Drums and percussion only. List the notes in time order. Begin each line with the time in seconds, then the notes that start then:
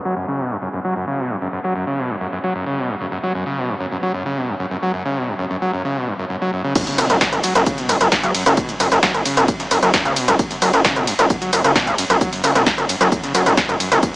6.75 kick, closed hi-hat, crash, ride, tambourine, shaker
6.87 open hi-hat, ride, shaker
6.98 snare, open hi-hat, ride, tambourine, shaker
7.10 closed hi-hat, ride, shaker
7.21 kick, snare, closed hi-hat, ride, tambourine, shaker
7.33 closed hi-hat, ride, shaker
7.44 snare, open hi-hat, ride, tambourine, shaker
7.55 closed hi-hat, ride, shaker
7.66 kick, closed hi-hat, ride, tambourine, shaker
7.78 closed hi-hat, ride, shaker
7.89 open hi-hat, ride, tambourine, shaker
8.01 closed hi-hat, ride, shaker
8.12 kick, snare, closed hi-hat, ride, tambourine, shaker
8.23 closed hi-hat, ride, shaker
8.35 open hi-hat, ride, shaker
8.46 closed hi-hat, ride, shaker
8.57 kick, closed hi-hat, ride, tambourine, shaker
8.69 closed hi-hat, ride, shaker
8.80 open hi-hat, ride, tambourine, shaker
8.92 closed hi-hat, ride, shaker
9.03 kick, snare, closed hi-hat, ride, tambourine, shaker
9.14 closed hi-hat, ride, shaker
9.26 open hi-hat, ride, tambourine, shaker
9.37 closed hi-hat, ride, shaker
9.48 kick, closed hi-hat, ride, tambourine, shaker
9.60 snare, closed hi-hat, ride, shaker
9.71 open hi-hat, ride, tambourine, shaker
9.83 closed hi-hat, ride, shaker
9.94 kick, snare, closed hi-hat, ride, tambourine, shaker
10.05 closed hi-hat, ride, shaker
10.16 open hi-hat, ride, tambourine, shaker
10.28 closed hi-hat, ride, shaker
10.39 kick, closed hi-hat, ride, tambourine, shaker
10.51 open hi-hat, ride, shaker
10.62 snare, open hi-hat, ride, tambourine, shaker
10.73 closed hi-hat, ride, shaker
10.85 kick, snare, closed hi-hat, ride, tambourine, shaker
10.96 closed hi-hat, ride, shaker
11.07 snare, open hi-hat, ride, tambourine, shaker
11.19 closed hi-hat, ride, shaker
11.30 kick, closed hi-hat, ride, tambourine, shaker
11.42 closed hi-hat, ride, shaker
11.53 open hi-hat, ride, tambourine, shaker
11.64 closed hi-hat, ride, shaker
11.76 kick, snare, closed hi-hat, ride, tambourine, shaker
11.87 closed hi-hat, ride, shaker
11.98 open hi-hat, ride, shaker
12.10 closed hi-hat, ride, shaker
12.21 kick, closed hi-hat, ride, tambourine, shaker
12.33 closed hi-hat, open hi-hat, ride, shaker
12.44 open hi-hat, ride, tambourine, shaker
12.55 closed hi-hat, ride, shaker
12.67 kick, snare, closed hi-hat, ride, tambourine, shaker
12.78 closed hi-hat, ride, shaker
12.89 open hi-hat, ride, tambourine, shaker
13.01 closed hi-hat, ride, shaker
13.12 kick, closed hi-hat, ride, tambourine, shaker
13.24 snare, closed hi-hat, ride, shaker
13.35 open hi-hat, ride, tambourine, shaker
13.46 closed hi-hat, ride, shaker
13.57 kick, snare, closed hi-hat, ride, tambourine, shaker
13.69 closed hi-hat, ride, shaker
13.80 open hi-hat, ride, tambourine, shaker
13.92 closed hi-hat, ride, shaker
14.03 kick, closed hi-hat, ride, tambourine, shaker